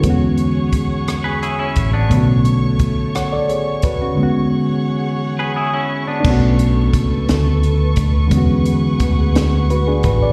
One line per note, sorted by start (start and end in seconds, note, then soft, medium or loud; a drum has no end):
0.00 2.05 D3 medium
0.00 2.06 G#3 medium
0.00 2.09 G#4 medium
0.00 4.13 C#5 medium
0.00 6.20 C#6 medium
0.00 kick medium
0.00 closed hi-hat medium
0.04 1.73 E2 medium
0.04 2.07 B3 medium
0.04 2.09 C#4 medium
0.04 2.09 F#5 medium
0.10 2.10 F#4 medium
0.38 closed hi-hat soft
0.73 kick medium
0.73 closed hi-hat medium
1.08 cross-stick loud
1.08 closed hi-hat medium
1.24 1.41 G#4 medium
1.24 1.41 B4 medium
1.42 1.58 E4 medium
1.42 1.59 G#4 medium
1.42 closed hi-hat soft
1.59 1.92 C#4 medium
1.59 1.92 E4 medium
1.76 2.12 A1 medium
1.76 kick medium
1.76 closed hi-hat medium
1.93 2.27 B3 medium
1.93 2.26 D4 medium
2.07 2.15 C#3 soft
2.07 4.13 A3 medium
2.07 4.15 A3 medium
2.11 3.84 B1 medium
2.11 4.14 D3 medium
2.11 4.14 B3 medium
2.11 3.14 C#4 medium
2.11 kick loud
2.11 closed hi-hat medium
2.17 3.15 F#4 medium
2.45 closed hi-hat medium
2.79 kick medium
2.79 closed hi-hat medium
3.15 3.32 C#5 medium
3.15 3.31 F#5 medium
3.15 cross-stick loud
3.15 closed hi-hat medium
3.32 3.49 A4 medium
3.32 3.48 D5 medium
3.49 3.82 G#4 medium
3.49 3.82 C#5 medium
3.49 closed hi-hat medium
3.82 4.15 D2 medium
3.82 4.00 F#4 soft
3.82 4.00 B4 medium
3.82 kick medium
3.82 closed hi-hat medium
4.02 4.20 C#4 soft
4.02 4.22 F#4 medium
4.13 6.18 E2 medium
4.13 6.19 D3 medium
4.17 6.22 E3 medium
4.17 6.20 G#3 medium
4.17 6.21 B3 medium
4.17 6.22 C#4 medium
4.17 6.22 G#4 medium
4.17 6.22 C#5 medium
4.17 6.22 F#5 medium
4.23 6.23 F#4 medium
5.39 5.55 G#4 medium
5.39 5.55 B4 medium
5.56 5.72 E4 medium
5.56 5.72 G#4 medium
5.73 6.06 C#4 medium
5.73 6.06 E4 medium
6.07 6.41 B3 medium
6.07 6.40 D4 medium
6.20 8.27 A3 medium
6.20 8.25 D4 medium
6.20 8.29 A4 medium
6.20 10.33 C#6 medium
6.25 6.90 B1 loud
6.25 8.28 B3 medium
6.25 8.29 C#4 medium
6.25 10.33 B4 medium
6.25 kick loud
6.25 crash loud
6.30 8.30 F#4 medium
6.59 closed hi-hat medium
6.93 7.25 C#2 medium
6.93 kick loud
6.93 closed hi-hat medium
7.29 7.94 D2 medium
7.29 snare loud
7.29 closed hi-hat medium
7.63 closed hi-hat medium
7.96 8.29 D2 loud
7.96 kick loud
7.96 closed hi-hat medium
8.27 10.32 D3 medium
8.27 10.33 G#3 medium
8.27 kick loud
8.27 closed hi-hat medium
8.32 8.97 E2 loud
8.32 10.33 B3 medium
8.32 9.68 C#4 medium
8.32 10.33 G#4 medium
8.32 10.33 F#5 medium
8.37 9.70 F#4 medium
8.65 closed hi-hat medium
9.00 10.06 D2 medium
9.00 kick loud
9.00 closed hi-hat medium
9.36 snare loud
9.36 closed hi-hat medium
9.70 9.87 F#4 medium
9.70 9.86 B4 medium
9.70 closed hi-hat medium
9.88 10.04 D4 medium
9.88 10.03 G#4 medium
10.03 10.33 A1 medium
10.03 10.21 F#4 medium
10.03 10.21 B4 medium
10.03 kick loud
10.03 closed hi-hat medium
10.22 10.33 G#4 medium
10.22 10.33 D5 medium